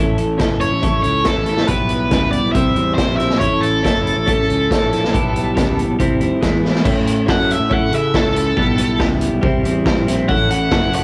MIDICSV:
0, 0, Header, 1, 5, 480
1, 0, Start_track
1, 0, Tempo, 430108
1, 1885, Time_signature, 4, 2, 24, 8
1, 12318, End_track
2, 0, Start_track
2, 0, Title_t, "Overdriven electric guitar"
2, 0, Program_c, 0, 29
2, 674, Note_on_c, 0, 73, 83
2, 1125, Note_off_c, 0, 73, 0
2, 1147, Note_on_c, 0, 73, 72
2, 1379, Note_off_c, 0, 73, 0
2, 1411, Note_on_c, 0, 69, 73
2, 1873, Note_off_c, 0, 69, 0
2, 1878, Note_on_c, 0, 71, 82
2, 2557, Note_off_c, 0, 71, 0
2, 2576, Note_on_c, 0, 74, 83
2, 2809, Note_off_c, 0, 74, 0
2, 2814, Note_on_c, 0, 76, 102
2, 3275, Note_off_c, 0, 76, 0
2, 3286, Note_on_c, 0, 72, 89
2, 3528, Note_off_c, 0, 72, 0
2, 3533, Note_on_c, 0, 76, 87
2, 3777, Note_off_c, 0, 76, 0
2, 3781, Note_on_c, 0, 73, 89
2, 4025, Note_on_c, 0, 69, 79
2, 4042, Note_off_c, 0, 73, 0
2, 7114, Note_off_c, 0, 69, 0
2, 8149, Note_on_c, 0, 78, 96
2, 8372, Note_off_c, 0, 78, 0
2, 8397, Note_on_c, 0, 76, 73
2, 8616, Note_off_c, 0, 76, 0
2, 8633, Note_on_c, 0, 78, 81
2, 8854, Note_off_c, 0, 78, 0
2, 8874, Note_on_c, 0, 76, 70
2, 9094, Note_off_c, 0, 76, 0
2, 9099, Note_on_c, 0, 69, 82
2, 10024, Note_off_c, 0, 69, 0
2, 11480, Note_on_c, 0, 78, 89
2, 11714, Note_off_c, 0, 78, 0
2, 11726, Note_on_c, 0, 78, 91
2, 12189, Note_off_c, 0, 78, 0
2, 12224, Note_on_c, 0, 78, 78
2, 12318, Note_off_c, 0, 78, 0
2, 12318, End_track
3, 0, Start_track
3, 0, Title_t, "Clean electric guitar"
3, 0, Program_c, 1, 27
3, 0, Note_on_c, 1, 61, 78
3, 0, Note_on_c, 1, 64, 77
3, 0, Note_on_c, 1, 69, 77
3, 186, Note_off_c, 1, 69, 0
3, 200, Note_on_c, 1, 69, 55
3, 223, Note_off_c, 1, 64, 0
3, 228, Note_on_c, 1, 64, 42
3, 407, Note_off_c, 1, 61, 0
3, 421, Note_on_c, 1, 61, 67
3, 430, Note_off_c, 1, 64, 0
3, 434, Note_on_c, 1, 64, 64
3, 441, Note_off_c, 1, 69, 0
3, 454, Note_on_c, 1, 69, 68
3, 887, Note_off_c, 1, 61, 0
3, 900, Note_on_c, 1, 61, 77
3, 914, Note_off_c, 1, 64, 0
3, 918, Note_on_c, 1, 64, 88
3, 919, Note_off_c, 1, 69, 0
3, 932, Note_on_c, 1, 69, 93
3, 1149, Note_off_c, 1, 69, 0
3, 1163, Note_on_c, 1, 69, 60
3, 1187, Note_off_c, 1, 64, 0
3, 1192, Note_on_c, 1, 64, 47
3, 1383, Note_off_c, 1, 61, 0
3, 1396, Note_on_c, 1, 61, 58
3, 1405, Note_off_c, 1, 64, 0
3, 1409, Note_off_c, 1, 69, 0
3, 1409, Note_on_c, 1, 64, 70
3, 1423, Note_on_c, 1, 69, 68
3, 1622, Note_off_c, 1, 69, 0
3, 1636, Note_on_c, 1, 69, 65
3, 1660, Note_off_c, 1, 64, 0
3, 1664, Note_on_c, 1, 64, 50
3, 1866, Note_off_c, 1, 61, 0
3, 1866, Note_off_c, 1, 69, 0
3, 1877, Note_on_c, 1, 55, 70
3, 1898, Note_on_c, 1, 59, 81
3, 1906, Note_off_c, 1, 64, 0
3, 1911, Note_on_c, 1, 64, 79
3, 2114, Note_off_c, 1, 64, 0
3, 2119, Note_on_c, 1, 64, 60
3, 2130, Note_off_c, 1, 59, 0
3, 2143, Note_on_c, 1, 59, 49
3, 2343, Note_off_c, 1, 55, 0
3, 2357, Note_on_c, 1, 55, 63
3, 2361, Note_off_c, 1, 59, 0
3, 2375, Note_on_c, 1, 59, 68
3, 2379, Note_off_c, 1, 64, 0
3, 2383, Note_on_c, 1, 64, 73
3, 2822, Note_off_c, 1, 55, 0
3, 2835, Note_on_c, 1, 55, 90
3, 2836, Note_off_c, 1, 59, 0
3, 2854, Note_on_c, 1, 60, 94
3, 2858, Note_off_c, 1, 64, 0
3, 2863, Note_on_c, 1, 64, 90
3, 3059, Note_off_c, 1, 64, 0
3, 3063, Note_on_c, 1, 64, 67
3, 3083, Note_off_c, 1, 60, 0
3, 3097, Note_on_c, 1, 60, 47
3, 3302, Note_off_c, 1, 55, 0
3, 3316, Note_on_c, 1, 55, 63
3, 3317, Note_off_c, 1, 60, 0
3, 3331, Note_on_c, 1, 60, 71
3, 3340, Note_off_c, 1, 64, 0
3, 3345, Note_on_c, 1, 64, 63
3, 3545, Note_off_c, 1, 64, 0
3, 3549, Note_on_c, 1, 64, 68
3, 3565, Note_off_c, 1, 60, 0
3, 3578, Note_on_c, 1, 60, 59
3, 3786, Note_off_c, 1, 60, 0
3, 3787, Note_off_c, 1, 55, 0
3, 3790, Note_on_c, 1, 61, 78
3, 3807, Note_off_c, 1, 64, 0
3, 3812, Note_on_c, 1, 64, 80
3, 3821, Note_on_c, 1, 69, 86
3, 4017, Note_off_c, 1, 69, 0
3, 4030, Note_on_c, 1, 69, 63
3, 4056, Note_off_c, 1, 64, 0
3, 4060, Note_on_c, 1, 64, 55
3, 4258, Note_off_c, 1, 61, 0
3, 4272, Note_on_c, 1, 61, 68
3, 4277, Note_off_c, 1, 64, 0
3, 4282, Note_on_c, 1, 64, 67
3, 4287, Note_off_c, 1, 69, 0
3, 4301, Note_on_c, 1, 69, 69
3, 4742, Note_off_c, 1, 61, 0
3, 4755, Note_on_c, 1, 61, 85
3, 4765, Note_off_c, 1, 64, 0
3, 4769, Note_on_c, 1, 64, 98
3, 4770, Note_off_c, 1, 69, 0
3, 4784, Note_on_c, 1, 69, 97
3, 4986, Note_off_c, 1, 69, 0
3, 4999, Note_on_c, 1, 69, 73
3, 5021, Note_off_c, 1, 64, 0
3, 5025, Note_on_c, 1, 64, 50
3, 5235, Note_off_c, 1, 61, 0
3, 5248, Note_on_c, 1, 61, 57
3, 5266, Note_off_c, 1, 64, 0
3, 5268, Note_off_c, 1, 69, 0
3, 5270, Note_on_c, 1, 64, 63
3, 5281, Note_on_c, 1, 69, 72
3, 5471, Note_off_c, 1, 69, 0
3, 5484, Note_on_c, 1, 69, 67
3, 5508, Note_off_c, 1, 64, 0
3, 5512, Note_on_c, 1, 64, 53
3, 5712, Note_off_c, 1, 69, 0
3, 5714, Note_off_c, 1, 61, 0
3, 5717, Note_on_c, 1, 55, 79
3, 5737, Note_on_c, 1, 59, 83
3, 5740, Note_off_c, 1, 64, 0
3, 5744, Note_on_c, 1, 64, 83
3, 5934, Note_off_c, 1, 64, 0
3, 5948, Note_on_c, 1, 64, 63
3, 5968, Note_off_c, 1, 59, 0
3, 5981, Note_on_c, 1, 59, 49
3, 6173, Note_off_c, 1, 55, 0
3, 6186, Note_on_c, 1, 55, 64
3, 6191, Note_off_c, 1, 59, 0
3, 6205, Note_off_c, 1, 64, 0
3, 6205, Note_on_c, 1, 59, 75
3, 6218, Note_on_c, 1, 64, 69
3, 6663, Note_off_c, 1, 55, 0
3, 6672, Note_off_c, 1, 59, 0
3, 6679, Note_off_c, 1, 64, 0
3, 6680, Note_on_c, 1, 55, 86
3, 6698, Note_on_c, 1, 60, 84
3, 6711, Note_on_c, 1, 64, 93
3, 6909, Note_off_c, 1, 64, 0
3, 6922, Note_on_c, 1, 64, 65
3, 6935, Note_off_c, 1, 60, 0
3, 6948, Note_on_c, 1, 60, 53
3, 7149, Note_off_c, 1, 55, 0
3, 7151, Note_off_c, 1, 64, 0
3, 7153, Note_on_c, 1, 56, 77
3, 7164, Note_off_c, 1, 60, 0
3, 7169, Note_on_c, 1, 59, 70
3, 7179, Note_on_c, 1, 64, 77
3, 7392, Note_off_c, 1, 64, 0
3, 7405, Note_on_c, 1, 64, 65
3, 7416, Note_off_c, 1, 59, 0
3, 7430, Note_on_c, 1, 59, 50
3, 7627, Note_off_c, 1, 56, 0
3, 7631, Note_off_c, 1, 59, 0
3, 7633, Note_off_c, 1, 64, 0
3, 7636, Note_on_c, 1, 61, 76
3, 7647, Note_on_c, 1, 64, 81
3, 7662, Note_on_c, 1, 69, 78
3, 7855, Note_off_c, 1, 69, 0
3, 7868, Note_on_c, 1, 69, 59
3, 7897, Note_off_c, 1, 64, 0
3, 7901, Note_on_c, 1, 64, 51
3, 8091, Note_off_c, 1, 61, 0
3, 8104, Note_on_c, 1, 61, 64
3, 8117, Note_off_c, 1, 64, 0
3, 8122, Note_on_c, 1, 64, 67
3, 8123, Note_off_c, 1, 69, 0
3, 8136, Note_on_c, 1, 69, 66
3, 8578, Note_off_c, 1, 61, 0
3, 8591, Note_on_c, 1, 61, 90
3, 8600, Note_off_c, 1, 64, 0
3, 8604, Note_on_c, 1, 64, 94
3, 8606, Note_off_c, 1, 69, 0
3, 8619, Note_on_c, 1, 69, 97
3, 8822, Note_off_c, 1, 69, 0
3, 8835, Note_on_c, 1, 69, 68
3, 8860, Note_off_c, 1, 64, 0
3, 8865, Note_on_c, 1, 64, 51
3, 9072, Note_off_c, 1, 61, 0
3, 9085, Note_on_c, 1, 61, 71
3, 9091, Note_off_c, 1, 64, 0
3, 9095, Note_on_c, 1, 64, 67
3, 9101, Note_off_c, 1, 69, 0
3, 9114, Note_on_c, 1, 69, 78
3, 9309, Note_off_c, 1, 69, 0
3, 9323, Note_on_c, 1, 69, 76
3, 9339, Note_off_c, 1, 64, 0
3, 9344, Note_on_c, 1, 64, 59
3, 9551, Note_off_c, 1, 69, 0
3, 9552, Note_off_c, 1, 61, 0
3, 9559, Note_on_c, 1, 55, 75
3, 9575, Note_on_c, 1, 59, 92
3, 9582, Note_off_c, 1, 64, 0
3, 9587, Note_on_c, 1, 64, 83
3, 9781, Note_off_c, 1, 64, 0
3, 9786, Note_on_c, 1, 64, 67
3, 9801, Note_off_c, 1, 59, 0
3, 9814, Note_on_c, 1, 59, 54
3, 10014, Note_off_c, 1, 55, 0
3, 10028, Note_on_c, 1, 55, 69
3, 10032, Note_off_c, 1, 59, 0
3, 10045, Note_on_c, 1, 59, 74
3, 10055, Note_off_c, 1, 64, 0
3, 10059, Note_on_c, 1, 64, 78
3, 10493, Note_off_c, 1, 55, 0
3, 10506, Note_on_c, 1, 55, 98
3, 10511, Note_off_c, 1, 59, 0
3, 10521, Note_on_c, 1, 60, 101
3, 10535, Note_off_c, 1, 64, 0
3, 10539, Note_on_c, 1, 64, 92
3, 10747, Note_off_c, 1, 64, 0
3, 10751, Note_on_c, 1, 64, 75
3, 10767, Note_off_c, 1, 60, 0
3, 10780, Note_on_c, 1, 60, 56
3, 10981, Note_off_c, 1, 55, 0
3, 10993, Note_off_c, 1, 60, 0
3, 10995, Note_on_c, 1, 55, 67
3, 11006, Note_on_c, 1, 60, 69
3, 11018, Note_off_c, 1, 64, 0
3, 11023, Note_on_c, 1, 64, 76
3, 11235, Note_off_c, 1, 64, 0
3, 11239, Note_on_c, 1, 64, 78
3, 11256, Note_off_c, 1, 60, 0
3, 11269, Note_on_c, 1, 60, 63
3, 11464, Note_off_c, 1, 55, 0
3, 11469, Note_off_c, 1, 60, 0
3, 11474, Note_on_c, 1, 61, 84
3, 11486, Note_off_c, 1, 64, 0
3, 11490, Note_on_c, 1, 64, 94
3, 11504, Note_on_c, 1, 69, 94
3, 11694, Note_off_c, 1, 69, 0
3, 11707, Note_on_c, 1, 69, 62
3, 11735, Note_off_c, 1, 64, 0
3, 11740, Note_on_c, 1, 64, 54
3, 11940, Note_off_c, 1, 61, 0
3, 11953, Note_on_c, 1, 61, 66
3, 11963, Note_off_c, 1, 64, 0
3, 11968, Note_on_c, 1, 64, 75
3, 11971, Note_off_c, 1, 69, 0
3, 11984, Note_on_c, 1, 69, 82
3, 12318, Note_off_c, 1, 61, 0
3, 12318, Note_off_c, 1, 64, 0
3, 12318, Note_off_c, 1, 69, 0
3, 12318, End_track
4, 0, Start_track
4, 0, Title_t, "Fingered electric bass"
4, 0, Program_c, 2, 33
4, 0, Note_on_c, 2, 33, 86
4, 452, Note_off_c, 2, 33, 0
4, 452, Note_on_c, 2, 30, 68
4, 790, Note_off_c, 2, 30, 0
4, 806, Note_on_c, 2, 33, 67
4, 1033, Note_off_c, 2, 33, 0
4, 1176, Note_on_c, 2, 37, 70
4, 1398, Note_off_c, 2, 37, 0
4, 1524, Note_on_c, 2, 33, 71
4, 1866, Note_off_c, 2, 33, 0
4, 1880, Note_on_c, 2, 35, 97
4, 2365, Note_off_c, 2, 35, 0
4, 2365, Note_on_c, 2, 37, 75
4, 2707, Note_off_c, 2, 37, 0
4, 2727, Note_on_c, 2, 35, 77
4, 2840, Note_off_c, 2, 35, 0
4, 2851, Note_on_c, 2, 36, 86
4, 3077, Note_off_c, 2, 36, 0
4, 3089, Note_on_c, 2, 40, 75
4, 3315, Note_off_c, 2, 40, 0
4, 3443, Note_on_c, 2, 34, 82
4, 3786, Note_off_c, 2, 34, 0
4, 3804, Note_on_c, 2, 33, 93
4, 4292, Note_off_c, 2, 33, 0
4, 4292, Note_on_c, 2, 30, 77
4, 4632, Note_off_c, 2, 30, 0
4, 4663, Note_on_c, 2, 33, 82
4, 4883, Note_off_c, 2, 33, 0
4, 5024, Note_on_c, 2, 37, 75
4, 5244, Note_off_c, 2, 37, 0
4, 5386, Note_on_c, 2, 34, 74
4, 5720, Note_off_c, 2, 34, 0
4, 5748, Note_on_c, 2, 35, 88
4, 6219, Note_off_c, 2, 35, 0
4, 6219, Note_on_c, 2, 37, 70
4, 6556, Note_off_c, 2, 37, 0
4, 6564, Note_on_c, 2, 35, 77
4, 6680, Note_off_c, 2, 35, 0
4, 6698, Note_on_c, 2, 36, 79
4, 6922, Note_off_c, 2, 36, 0
4, 6929, Note_on_c, 2, 39, 75
4, 7043, Note_off_c, 2, 39, 0
4, 7174, Note_on_c, 2, 40, 81
4, 7278, Note_off_c, 2, 40, 0
4, 7285, Note_on_c, 2, 52, 76
4, 7629, Note_off_c, 2, 52, 0
4, 7643, Note_on_c, 2, 45, 96
4, 8130, Note_off_c, 2, 45, 0
4, 8130, Note_on_c, 2, 42, 82
4, 8471, Note_off_c, 2, 42, 0
4, 8477, Note_on_c, 2, 45, 80
4, 8710, Note_off_c, 2, 45, 0
4, 8833, Note_on_c, 2, 49, 72
4, 9068, Note_off_c, 2, 49, 0
4, 9192, Note_on_c, 2, 37, 75
4, 9541, Note_off_c, 2, 37, 0
4, 9565, Note_on_c, 2, 35, 108
4, 10044, Note_off_c, 2, 35, 0
4, 10044, Note_on_c, 2, 37, 80
4, 10386, Note_off_c, 2, 37, 0
4, 10413, Note_on_c, 2, 35, 82
4, 10520, Note_off_c, 2, 35, 0
4, 10526, Note_on_c, 2, 36, 93
4, 10754, Note_off_c, 2, 36, 0
4, 10767, Note_on_c, 2, 40, 75
4, 10994, Note_off_c, 2, 40, 0
4, 11121, Note_on_c, 2, 34, 83
4, 11464, Note_off_c, 2, 34, 0
4, 11485, Note_on_c, 2, 33, 90
4, 11964, Note_off_c, 2, 33, 0
4, 11964, Note_on_c, 2, 30, 76
4, 12297, Note_off_c, 2, 30, 0
4, 12318, End_track
5, 0, Start_track
5, 0, Title_t, "Drums"
5, 198, Note_on_c, 9, 42, 53
5, 309, Note_off_c, 9, 42, 0
5, 437, Note_on_c, 9, 42, 64
5, 438, Note_on_c, 9, 38, 92
5, 444, Note_on_c, 9, 36, 97
5, 549, Note_off_c, 9, 42, 0
5, 550, Note_off_c, 9, 38, 0
5, 556, Note_off_c, 9, 36, 0
5, 678, Note_on_c, 9, 42, 60
5, 790, Note_off_c, 9, 42, 0
5, 925, Note_on_c, 9, 42, 70
5, 926, Note_on_c, 9, 36, 104
5, 1036, Note_off_c, 9, 42, 0
5, 1038, Note_off_c, 9, 36, 0
5, 1158, Note_on_c, 9, 42, 50
5, 1270, Note_off_c, 9, 42, 0
5, 1391, Note_on_c, 9, 42, 67
5, 1392, Note_on_c, 9, 38, 92
5, 1403, Note_on_c, 9, 36, 95
5, 1503, Note_off_c, 9, 42, 0
5, 1504, Note_off_c, 9, 38, 0
5, 1514, Note_off_c, 9, 36, 0
5, 1629, Note_on_c, 9, 42, 50
5, 1630, Note_on_c, 9, 38, 25
5, 1741, Note_off_c, 9, 42, 0
5, 1742, Note_off_c, 9, 38, 0
5, 1753, Note_on_c, 9, 38, 69
5, 1865, Note_off_c, 9, 38, 0
5, 1868, Note_on_c, 9, 42, 78
5, 1882, Note_on_c, 9, 36, 89
5, 1980, Note_off_c, 9, 42, 0
5, 1994, Note_off_c, 9, 36, 0
5, 2108, Note_on_c, 9, 42, 61
5, 2219, Note_off_c, 9, 42, 0
5, 2354, Note_on_c, 9, 42, 73
5, 2356, Note_on_c, 9, 38, 94
5, 2362, Note_on_c, 9, 36, 100
5, 2466, Note_off_c, 9, 42, 0
5, 2467, Note_off_c, 9, 38, 0
5, 2473, Note_off_c, 9, 36, 0
5, 2596, Note_on_c, 9, 42, 67
5, 2708, Note_off_c, 9, 42, 0
5, 2844, Note_on_c, 9, 42, 83
5, 2845, Note_on_c, 9, 36, 105
5, 2955, Note_off_c, 9, 42, 0
5, 2957, Note_off_c, 9, 36, 0
5, 3079, Note_on_c, 9, 42, 46
5, 3190, Note_off_c, 9, 42, 0
5, 3325, Note_on_c, 9, 36, 92
5, 3325, Note_on_c, 9, 42, 66
5, 3326, Note_on_c, 9, 38, 95
5, 3436, Note_off_c, 9, 36, 0
5, 3436, Note_off_c, 9, 42, 0
5, 3437, Note_off_c, 9, 38, 0
5, 3567, Note_on_c, 9, 42, 51
5, 3568, Note_on_c, 9, 38, 30
5, 3679, Note_off_c, 9, 42, 0
5, 3680, Note_off_c, 9, 38, 0
5, 3683, Note_on_c, 9, 38, 68
5, 3794, Note_off_c, 9, 38, 0
5, 3804, Note_on_c, 9, 42, 69
5, 3806, Note_on_c, 9, 36, 87
5, 3915, Note_off_c, 9, 42, 0
5, 3918, Note_off_c, 9, 36, 0
5, 4051, Note_on_c, 9, 42, 57
5, 4162, Note_off_c, 9, 42, 0
5, 4292, Note_on_c, 9, 36, 99
5, 4298, Note_on_c, 9, 42, 68
5, 4299, Note_on_c, 9, 38, 94
5, 4404, Note_off_c, 9, 36, 0
5, 4410, Note_off_c, 9, 42, 0
5, 4411, Note_off_c, 9, 38, 0
5, 4541, Note_on_c, 9, 42, 54
5, 4652, Note_off_c, 9, 42, 0
5, 4771, Note_on_c, 9, 42, 75
5, 4772, Note_on_c, 9, 36, 102
5, 4883, Note_off_c, 9, 42, 0
5, 4884, Note_off_c, 9, 36, 0
5, 5019, Note_on_c, 9, 42, 51
5, 5131, Note_off_c, 9, 42, 0
5, 5256, Note_on_c, 9, 36, 85
5, 5264, Note_on_c, 9, 42, 67
5, 5265, Note_on_c, 9, 38, 87
5, 5368, Note_off_c, 9, 36, 0
5, 5375, Note_off_c, 9, 42, 0
5, 5377, Note_off_c, 9, 38, 0
5, 5499, Note_on_c, 9, 42, 55
5, 5500, Note_on_c, 9, 38, 29
5, 5610, Note_off_c, 9, 42, 0
5, 5611, Note_off_c, 9, 38, 0
5, 5627, Note_on_c, 9, 38, 66
5, 5738, Note_off_c, 9, 38, 0
5, 5740, Note_on_c, 9, 36, 103
5, 5741, Note_on_c, 9, 42, 76
5, 5851, Note_off_c, 9, 36, 0
5, 5853, Note_off_c, 9, 42, 0
5, 5978, Note_on_c, 9, 42, 60
5, 6090, Note_off_c, 9, 42, 0
5, 6215, Note_on_c, 9, 36, 105
5, 6216, Note_on_c, 9, 42, 81
5, 6217, Note_on_c, 9, 38, 92
5, 6327, Note_off_c, 9, 36, 0
5, 6328, Note_off_c, 9, 42, 0
5, 6329, Note_off_c, 9, 38, 0
5, 6461, Note_on_c, 9, 42, 63
5, 6572, Note_off_c, 9, 42, 0
5, 6692, Note_on_c, 9, 42, 76
5, 6693, Note_on_c, 9, 36, 99
5, 6804, Note_off_c, 9, 42, 0
5, 6805, Note_off_c, 9, 36, 0
5, 6926, Note_on_c, 9, 42, 50
5, 7038, Note_off_c, 9, 42, 0
5, 7169, Note_on_c, 9, 42, 75
5, 7170, Note_on_c, 9, 38, 89
5, 7171, Note_on_c, 9, 36, 95
5, 7280, Note_off_c, 9, 42, 0
5, 7281, Note_off_c, 9, 38, 0
5, 7282, Note_off_c, 9, 36, 0
5, 7420, Note_on_c, 9, 38, 51
5, 7532, Note_off_c, 9, 38, 0
5, 7533, Note_on_c, 9, 38, 62
5, 7645, Note_off_c, 9, 38, 0
5, 7648, Note_on_c, 9, 36, 110
5, 7648, Note_on_c, 9, 49, 90
5, 7760, Note_off_c, 9, 36, 0
5, 7760, Note_off_c, 9, 49, 0
5, 7893, Note_on_c, 9, 42, 83
5, 8005, Note_off_c, 9, 42, 0
5, 8129, Note_on_c, 9, 36, 97
5, 8131, Note_on_c, 9, 38, 103
5, 8241, Note_off_c, 9, 36, 0
5, 8242, Note_off_c, 9, 38, 0
5, 8376, Note_on_c, 9, 42, 91
5, 8488, Note_off_c, 9, 42, 0
5, 8605, Note_on_c, 9, 36, 99
5, 8716, Note_off_c, 9, 36, 0
5, 8846, Note_on_c, 9, 42, 80
5, 8958, Note_off_c, 9, 42, 0
5, 9087, Note_on_c, 9, 36, 99
5, 9095, Note_on_c, 9, 38, 107
5, 9199, Note_off_c, 9, 36, 0
5, 9206, Note_off_c, 9, 38, 0
5, 9332, Note_on_c, 9, 42, 90
5, 9443, Note_off_c, 9, 42, 0
5, 9564, Note_on_c, 9, 36, 97
5, 9676, Note_off_c, 9, 36, 0
5, 9797, Note_on_c, 9, 42, 94
5, 9909, Note_off_c, 9, 42, 0
5, 10040, Note_on_c, 9, 38, 92
5, 10042, Note_on_c, 9, 36, 101
5, 10152, Note_off_c, 9, 38, 0
5, 10153, Note_off_c, 9, 36, 0
5, 10278, Note_on_c, 9, 42, 104
5, 10389, Note_off_c, 9, 42, 0
5, 10522, Note_on_c, 9, 36, 120
5, 10634, Note_off_c, 9, 36, 0
5, 10769, Note_on_c, 9, 42, 78
5, 10881, Note_off_c, 9, 42, 0
5, 11002, Note_on_c, 9, 36, 106
5, 11008, Note_on_c, 9, 38, 97
5, 11113, Note_off_c, 9, 36, 0
5, 11119, Note_off_c, 9, 38, 0
5, 11249, Note_on_c, 9, 42, 93
5, 11250, Note_on_c, 9, 38, 32
5, 11361, Note_off_c, 9, 42, 0
5, 11362, Note_off_c, 9, 38, 0
5, 11483, Note_on_c, 9, 36, 93
5, 11594, Note_off_c, 9, 36, 0
5, 11724, Note_on_c, 9, 42, 93
5, 11836, Note_off_c, 9, 42, 0
5, 11956, Note_on_c, 9, 38, 110
5, 11958, Note_on_c, 9, 36, 100
5, 12068, Note_off_c, 9, 38, 0
5, 12070, Note_off_c, 9, 36, 0
5, 12200, Note_on_c, 9, 42, 98
5, 12311, Note_off_c, 9, 42, 0
5, 12318, End_track
0, 0, End_of_file